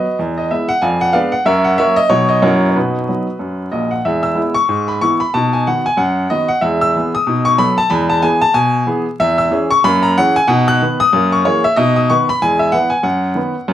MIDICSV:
0, 0, Header, 1, 2, 480
1, 0, Start_track
1, 0, Key_signature, 5, "major"
1, 0, Tempo, 321543
1, 267, Time_signature, 4, 2, 24, 8
1, 6041, Key_signature, 4, "major"
1, 13729, Key_signature, 5, "major"
1, 20498, End_track
2, 0, Start_track
2, 0, Title_t, "Grand piano"
2, 0, Program_c, 0, 0
2, 0, Note_on_c, 0, 66, 48
2, 0, Note_on_c, 0, 71, 53
2, 0, Note_on_c, 0, 75, 73
2, 257, Note_off_c, 0, 66, 0
2, 257, Note_off_c, 0, 71, 0
2, 282, Note_off_c, 0, 75, 0
2, 286, Note_on_c, 0, 40, 71
2, 521, Control_c, 0, 64, 127
2, 561, Note_on_c, 0, 75, 66
2, 687, Note_off_c, 0, 40, 0
2, 752, Note_off_c, 0, 75, 0
2, 759, Note_on_c, 0, 76, 77
2, 764, Control_c, 0, 64, 0
2, 768, Note_on_c, 0, 56, 41
2, 768, Note_on_c, 0, 59, 44
2, 778, Note_on_c, 0, 64, 42
2, 1023, Note_on_c, 0, 78, 101
2, 1027, Note_off_c, 0, 56, 0
2, 1027, Note_off_c, 0, 59, 0
2, 1034, Note_off_c, 0, 64, 0
2, 1039, Note_off_c, 0, 76, 0
2, 1218, Note_on_c, 0, 80, 86
2, 1224, Note_off_c, 0, 78, 0
2, 1225, Note_on_c, 0, 41, 75
2, 1233, Note_on_c, 0, 77, 66
2, 1238, Note_on_c, 0, 74, 63
2, 1488, Control_c, 0, 64, 127
2, 1497, Note_off_c, 0, 77, 0
2, 1500, Note_off_c, 0, 74, 0
2, 1508, Note_on_c, 0, 78, 99
2, 1509, Note_off_c, 0, 80, 0
2, 1636, Note_off_c, 0, 41, 0
2, 1686, Note_on_c, 0, 77, 98
2, 1693, Note_on_c, 0, 56, 44
2, 1698, Note_on_c, 0, 71, 73
2, 1699, Note_on_c, 0, 59, 55
2, 1705, Note_on_c, 0, 74, 77
2, 1707, Note_off_c, 0, 78, 0
2, 1711, Note_on_c, 0, 62, 54
2, 1724, Control_c, 0, 64, 0
2, 1962, Note_off_c, 0, 56, 0
2, 1967, Note_off_c, 0, 59, 0
2, 1969, Note_off_c, 0, 71, 0
2, 1971, Note_on_c, 0, 78, 90
2, 1973, Note_off_c, 0, 74, 0
2, 1975, Note_off_c, 0, 62, 0
2, 1984, Note_off_c, 0, 77, 0
2, 2173, Note_on_c, 0, 42, 84
2, 2177, Note_on_c, 0, 76, 102
2, 2179, Note_off_c, 0, 78, 0
2, 2180, Note_on_c, 0, 70, 83
2, 2186, Note_on_c, 0, 73, 73
2, 2445, Control_c, 0, 64, 127
2, 2451, Note_off_c, 0, 70, 0
2, 2454, Note_off_c, 0, 73, 0
2, 2454, Note_on_c, 0, 78, 88
2, 2470, Note_off_c, 0, 76, 0
2, 2590, Note_off_c, 0, 42, 0
2, 2657, Note_on_c, 0, 76, 103
2, 2661, Note_off_c, 0, 78, 0
2, 2671, Note_on_c, 0, 54, 45
2, 2671, Note_on_c, 0, 58, 55
2, 2677, Note_on_c, 0, 70, 71
2, 2681, Note_on_c, 0, 61, 56
2, 2685, Note_on_c, 0, 73, 89
2, 2691, Control_c, 0, 64, 0
2, 2932, Note_on_c, 0, 75, 111
2, 2936, Note_off_c, 0, 54, 0
2, 2936, Note_off_c, 0, 58, 0
2, 2941, Note_off_c, 0, 70, 0
2, 2943, Note_off_c, 0, 61, 0
2, 2945, Note_off_c, 0, 73, 0
2, 2951, Note_off_c, 0, 76, 0
2, 3127, Note_on_c, 0, 47, 87
2, 3129, Note_on_c, 0, 73, 99
2, 3139, Note_on_c, 0, 54, 57
2, 3141, Note_off_c, 0, 75, 0
2, 3150, Note_on_c, 0, 59, 57
2, 3161, Note_on_c, 0, 63, 50
2, 3400, Control_c, 0, 64, 127
2, 3408, Note_off_c, 0, 54, 0
2, 3412, Note_on_c, 0, 75, 88
2, 3416, Note_off_c, 0, 59, 0
2, 3424, Note_off_c, 0, 63, 0
2, 3427, Note_off_c, 0, 73, 0
2, 3548, Note_off_c, 0, 47, 0
2, 3615, Note_on_c, 0, 42, 91
2, 3620, Note_on_c, 0, 54, 51
2, 3621, Note_on_c, 0, 73, 88
2, 3622, Note_off_c, 0, 75, 0
2, 3636, Note_on_c, 0, 58, 46
2, 3636, Note_on_c, 0, 66, 65
2, 3638, Note_on_c, 0, 64, 48
2, 3641, Note_on_c, 0, 70, 76
2, 3658, Control_c, 0, 64, 0
2, 3889, Note_off_c, 0, 54, 0
2, 3898, Control_c, 0, 64, 127
2, 3901, Note_off_c, 0, 58, 0
2, 3902, Note_off_c, 0, 64, 0
2, 4000, Note_off_c, 0, 73, 0
2, 4005, Note_off_c, 0, 66, 0
2, 4007, Note_off_c, 0, 70, 0
2, 4022, Note_on_c, 0, 73, 55
2, 4033, Note_off_c, 0, 42, 0
2, 4112, Note_off_c, 0, 73, 0
2, 4116, Note_on_c, 0, 71, 67
2, 4124, Note_on_c, 0, 47, 63
2, 4129, Control_c, 0, 64, 0
2, 4138, Note_on_c, 0, 66, 54
2, 4142, Note_on_c, 0, 63, 55
2, 4375, Control_c, 0, 64, 127
2, 4530, Note_off_c, 0, 47, 0
2, 4598, Note_off_c, 0, 63, 0
2, 4608, Note_on_c, 0, 54, 36
2, 4613, Control_c, 0, 64, 0
2, 4617, Note_on_c, 0, 59, 44
2, 4620, Note_on_c, 0, 63, 37
2, 4870, Note_off_c, 0, 54, 0
2, 4877, Note_off_c, 0, 59, 0
2, 4879, Note_off_c, 0, 63, 0
2, 5067, Note_on_c, 0, 42, 50
2, 5481, Note_off_c, 0, 42, 0
2, 5547, Note_on_c, 0, 75, 67
2, 5555, Note_on_c, 0, 46, 58
2, 5556, Note_on_c, 0, 34, 61
2, 5797, Note_off_c, 0, 66, 0
2, 5834, Note_on_c, 0, 78, 66
2, 5840, Note_off_c, 0, 75, 0
2, 5846, Note_off_c, 0, 71, 0
2, 5942, Note_off_c, 0, 46, 0
2, 5943, Note_off_c, 0, 34, 0
2, 6036, Note_off_c, 0, 78, 0
2, 6047, Note_on_c, 0, 76, 79
2, 6049, Note_on_c, 0, 40, 74
2, 6086, Note_on_c, 0, 56, 47
2, 6296, Control_c, 0, 64, 127
2, 6313, Note_on_c, 0, 88, 84
2, 6330, Note_off_c, 0, 76, 0
2, 6338, Note_off_c, 0, 56, 0
2, 6455, Note_off_c, 0, 40, 0
2, 6490, Note_on_c, 0, 56, 53
2, 6498, Note_on_c, 0, 59, 43
2, 6512, Note_on_c, 0, 64, 48
2, 6540, Control_c, 0, 64, 0
2, 6764, Note_off_c, 0, 56, 0
2, 6769, Note_off_c, 0, 59, 0
2, 6780, Note_off_c, 0, 64, 0
2, 6783, Note_on_c, 0, 85, 97
2, 6802, Note_off_c, 0, 88, 0
2, 6997, Note_on_c, 0, 44, 74
2, 7255, Control_c, 0, 64, 127
2, 7277, Note_off_c, 0, 85, 0
2, 7284, Note_on_c, 0, 83, 78
2, 7409, Note_off_c, 0, 44, 0
2, 7483, Note_off_c, 0, 83, 0
2, 7485, Note_on_c, 0, 85, 92
2, 7486, Note_on_c, 0, 52, 43
2, 7493, Note_on_c, 0, 64, 56
2, 7496, Note_on_c, 0, 59, 48
2, 7505, Control_c, 0, 64, 0
2, 7750, Note_off_c, 0, 52, 0
2, 7756, Note_off_c, 0, 64, 0
2, 7758, Note_off_c, 0, 59, 0
2, 7764, Note_on_c, 0, 83, 84
2, 7771, Note_off_c, 0, 85, 0
2, 7963, Note_off_c, 0, 83, 0
2, 7970, Note_on_c, 0, 81, 91
2, 7976, Note_on_c, 0, 47, 81
2, 8009, Note_on_c, 0, 63, 51
2, 8224, Control_c, 0, 64, 127
2, 8254, Note_off_c, 0, 81, 0
2, 8258, Note_on_c, 0, 80, 72
2, 8262, Note_off_c, 0, 63, 0
2, 8381, Note_off_c, 0, 47, 0
2, 8451, Note_off_c, 0, 80, 0
2, 8463, Control_c, 0, 64, 0
2, 8468, Note_on_c, 0, 78, 86
2, 8470, Note_on_c, 0, 51, 50
2, 8484, Note_on_c, 0, 59, 48
2, 8485, Note_on_c, 0, 66, 47
2, 8729, Note_off_c, 0, 51, 0
2, 8739, Note_off_c, 0, 59, 0
2, 8739, Note_off_c, 0, 66, 0
2, 8743, Note_off_c, 0, 78, 0
2, 8745, Note_on_c, 0, 80, 90
2, 8914, Note_on_c, 0, 42, 80
2, 8919, Note_on_c, 0, 78, 87
2, 8935, Note_off_c, 0, 80, 0
2, 9329, Note_off_c, 0, 42, 0
2, 9405, Note_off_c, 0, 78, 0
2, 9405, Note_on_c, 0, 75, 93
2, 9419, Note_on_c, 0, 59, 55
2, 9421, Note_on_c, 0, 51, 52
2, 9438, Note_on_c, 0, 66, 47
2, 9680, Note_on_c, 0, 78, 87
2, 9681, Note_off_c, 0, 59, 0
2, 9682, Note_off_c, 0, 51, 0
2, 9692, Note_off_c, 0, 75, 0
2, 9695, Note_off_c, 0, 66, 0
2, 9873, Note_on_c, 0, 76, 88
2, 9881, Note_on_c, 0, 40, 77
2, 9883, Note_off_c, 0, 78, 0
2, 9915, Note_on_c, 0, 56, 59
2, 10145, Control_c, 0, 64, 127
2, 10167, Note_off_c, 0, 76, 0
2, 10172, Note_on_c, 0, 88, 94
2, 10173, Note_off_c, 0, 56, 0
2, 10293, Note_off_c, 0, 40, 0
2, 10387, Control_c, 0, 64, 0
2, 10398, Note_on_c, 0, 52, 42
2, 10402, Note_on_c, 0, 59, 52
2, 10414, Note_on_c, 0, 68, 52
2, 10654, Note_off_c, 0, 88, 0
2, 10655, Note_off_c, 0, 52, 0
2, 10658, Note_off_c, 0, 59, 0
2, 10666, Note_off_c, 0, 68, 0
2, 10669, Note_on_c, 0, 87, 103
2, 10850, Note_on_c, 0, 47, 78
2, 10879, Note_on_c, 0, 63, 60
2, 11105, Control_c, 0, 64, 127
2, 11122, Note_on_c, 0, 85, 104
2, 11136, Note_off_c, 0, 63, 0
2, 11142, Note_off_c, 0, 87, 0
2, 11258, Note_off_c, 0, 47, 0
2, 11317, Note_on_c, 0, 54, 55
2, 11322, Note_on_c, 0, 83, 109
2, 11323, Note_on_c, 0, 59, 64
2, 11324, Note_off_c, 0, 85, 0
2, 11326, Note_on_c, 0, 69, 53
2, 11348, Control_c, 0, 64, 0
2, 11585, Note_off_c, 0, 54, 0
2, 11589, Note_off_c, 0, 59, 0
2, 11591, Note_off_c, 0, 69, 0
2, 11609, Note_on_c, 0, 81, 108
2, 11611, Note_off_c, 0, 83, 0
2, 11790, Note_on_c, 0, 83, 91
2, 11802, Note_on_c, 0, 40, 97
2, 11807, Note_off_c, 0, 81, 0
2, 11827, Note_on_c, 0, 56, 54
2, 12065, Control_c, 0, 64, 127
2, 12084, Note_on_c, 0, 81, 99
2, 12085, Note_off_c, 0, 83, 0
2, 12087, Note_off_c, 0, 56, 0
2, 12213, Note_off_c, 0, 40, 0
2, 12277, Note_on_c, 0, 80, 104
2, 12285, Note_off_c, 0, 81, 0
2, 12285, Note_on_c, 0, 59, 55
2, 12293, Note_on_c, 0, 52, 51
2, 12304, Note_on_c, 0, 68, 56
2, 12307, Control_c, 0, 64, 0
2, 12550, Note_off_c, 0, 59, 0
2, 12556, Note_off_c, 0, 52, 0
2, 12561, Note_on_c, 0, 81, 118
2, 12564, Note_off_c, 0, 68, 0
2, 12568, Note_off_c, 0, 80, 0
2, 12748, Note_on_c, 0, 47, 86
2, 12752, Note_on_c, 0, 80, 109
2, 12763, Note_off_c, 0, 81, 0
2, 13165, Note_off_c, 0, 47, 0
2, 13234, Note_on_c, 0, 52, 55
2, 13240, Note_off_c, 0, 80, 0
2, 13242, Note_on_c, 0, 59, 61
2, 13252, Note_on_c, 0, 68, 61
2, 13502, Note_off_c, 0, 52, 0
2, 13508, Note_off_c, 0, 59, 0
2, 13515, Note_off_c, 0, 68, 0
2, 13730, Note_on_c, 0, 40, 84
2, 13731, Note_on_c, 0, 76, 108
2, 13984, Control_c, 0, 64, 127
2, 14004, Note_on_c, 0, 88, 98
2, 14014, Note_off_c, 0, 76, 0
2, 14137, Note_off_c, 0, 40, 0
2, 14190, Note_on_c, 0, 52, 59
2, 14204, Note_on_c, 0, 68, 65
2, 14207, Note_on_c, 0, 61, 53
2, 14223, Control_c, 0, 64, 0
2, 14459, Note_off_c, 0, 52, 0
2, 14468, Note_off_c, 0, 68, 0
2, 14470, Note_off_c, 0, 61, 0
2, 14487, Note_off_c, 0, 88, 0
2, 14487, Note_on_c, 0, 85, 115
2, 14684, Note_off_c, 0, 85, 0
2, 14692, Note_on_c, 0, 42, 94
2, 14692, Note_on_c, 0, 83, 127
2, 14728, Note_on_c, 0, 58, 69
2, 14933, Control_c, 0, 64, 127
2, 14967, Note_on_c, 0, 82, 102
2, 14973, Note_off_c, 0, 83, 0
2, 14980, Note_off_c, 0, 58, 0
2, 15097, Note_off_c, 0, 42, 0
2, 15163, Note_off_c, 0, 82, 0
2, 15186, Control_c, 0, 64, 0
2, 15190, Note_on_c, 0, 78, 117
2, 15200, Note_on_c, 0, 52, 62
2, 15208, Note_on_c, 0, 61, 65
2, 15212, Note_on_c, 0, 68, 62
2, 15454, Note_off_c, 0, 52, 0
2, 15459, Note_off_c, 0, 61, 0
2, 15462, Note_off_c, 0, 78, 0
2, 15463, Note_off_c, 0, 68, 0
2, 15466, Note_on_c, 0, 80, 112
2, 15635, Note_on_c, 0, 78, 99
2, 15643, Note_on_c, 0, 47, 107
2, 15652, Note_off_c, 0, 80, 0
2, 15672, Note_on_c, 0, 63, 72
2, 15906, Control_c, 0, 64, 127
2, 15924, Note_off_c, 0, 78, 0
2, 15927, Note_off_c, 0, 63, 0
2, 15942, Note_on_c, 0, 90, 112
2, 16050, Note_off_c, 0, 47, 0
2, 16135, Control_c, 0, 64, 0
2, 16155, Note_on_c, 0, 51, 54
2, 16157, Note_on_c, 0, 59, 53
2, 16160, Note_on_c, 0, 71, 57
2, 16410, Note_off_c, 0, 51, 0
2, 16410, Note_off_c, 0, 59, 0
2, 16413, Note_off_c, 0, 71, 0
2, 16414, Note_off_c, 0, 90, 0
2, 16422, Note_on_c, 0, 87, 127
2, 16613, Note_on_c, 0, 42, 89
2, 16648, Note_on_c, 0, 58, 69
2, 16864, Control_c, 0, 64, 127
2, 16893, Note_off_c, 0, 87, 0
2, 16899, Note_off_c, 0, 58, 0
2, 16904, Note_on_c, 0, 85, 89
2, 17015, Note_off_c, 0, 42, 0
2, 17089, Note_off_c, 0, 85, 0
2, 17092, Control_c, 0, 64, 0
2, 17097, Note_on_c, 0, 73, 97
2, 17101, Note_on_c, 0, 58, 59
2, 17102, Note_on_c, 0, 52, 61
2, 17114, Note_on_c, 0, 68, 59
2, 17358, Note_off_c, 0, 58, 0
2, 17359, Note_off_c, 0, 52, 0
2, 17367, Note_off_c, 0, 68, 0
2, 17372, Note_off_c, 0, 73, 0
2, 17380, Note_on_c, 0, 76, 105
2, 17559, Note_on_c, 0, 75, 105
2, 17566, Note_off_c, 0, 76, 0
2, 17573, Note_on_c, 0, 47, 96
2, 17599, Note_on_c, 0, 63, 64
2, 17801, Control_c, 0, 64, 127
2, 17843, Note_off_c, 0, 75, 0
2, 17851, Note_off_c, 0, 63, 0
2, 17856, Note_on_c, 0, 87, 89
2, 17973, Note_off_c, 0, 47, 0
2, 18043, Note_off_c, 0, 87, 0
2, 18057, Note_on_c, 0, 85, 92
2, 18059, Control_c, 0, 64, 0
2, 18067, Note_on_c, 0, 51, 54
2, 18069, Note_on_c, 0, 59, 56
2, 18082, Note_on_c, 0, 71, 63
2, 18322, Note_off_c, 0, 51, 0
2, 18323, Note_off_c, 0, 59, 0
2, 18331, Note_off_c, 0, 85, 0
2, 18332, Note_off_c, 0, 71, 0
2, 18350, Note_on_c, 0, 83, 108
2, 18529, Note_off_c, 0, 83, 0
2, 18542, Note_on_c, 0, 80, 103
2, 18543, Note_on_c, 0, 40, 75
2, 18570, Note_on_c, 0, 56, 62
2, 18764, Control_c, 0, 64, 127
2, 18799, Note_on_c, 0, 76, 91
2, 18812, Note_off_c, 0, 80, 0
2, 18818, Note_off_c, 0, 56, 0
2, 18937, Note_off_c, 0, 40, 0
2, 18990, Note_on_c, 0, 78, 96
2, 18993, Note_off_c, 0, 76, 0
2, 19000, Note_on_c, 0, 52, 44
2, 19003, Note_on_c, 0, 59, 47
2, 19011, Control_c, 0, 64, 0
2, 19014, Note_on_c, 0, 71, 51
2, 19256, Note_on_c, 0, 80, 88
2, 19261, Note_off_c, 0, 52, 0
2, 19263, Note_off_c, 0, 59, 0
2, 19271, Note_off_c, 0, 71, 0
2, 19275, Note_off_c, 0, 78, 0
2, 19454, Note_on_c, 0, 42, 76
2, 19458, Note_on_c, 0, 78, 84
2, 19460, Note_off_c, 0, 80, 0
2, 19731, Control_c, 0, 64, 127
2, 19868, Note_off_c, 0, 42, 0
2, 19930, Note_on_c, 0, 51, 43
2, 19944, Note_on_c, 0, 71, 49
2, 19947, Note_on_c, 0, 59, 43
2, 19962, Control_c, 0, 64, 0
2, 20198, Note_off_c, 0, 51, 0
2, 20209, Note_off_c, 0, 71, 0
2, 20210, Note_off_c, 0, 59, 0
2, 20423, Note_on_c, 0, 42, 88
2, 20498, Note_off_c, 0, 42, 0
2, 20498, Note_off_c, 0, 78, 0
2, 20498, End_track
0, 0, End_of_file